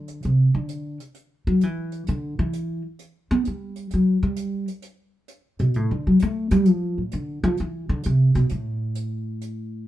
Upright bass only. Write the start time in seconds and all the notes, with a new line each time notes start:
Already playing: D3
0.25 C3
0.55 D3
1.47 F#3
1.63 E3
2.09 D3
2.39 E3
3.31 B3
3.47 G3
3.94 F#3
4.23 G3
5.60 B2
5.76 A2
5.91 D3
6.07 F#3
6.22 A3
6.51 G3
6.68 F3
6.98 A2
7.13 D3
7.44 F3
7.60 E3
7.89 D3
8.06 C3
8.35 B2
8.51 A2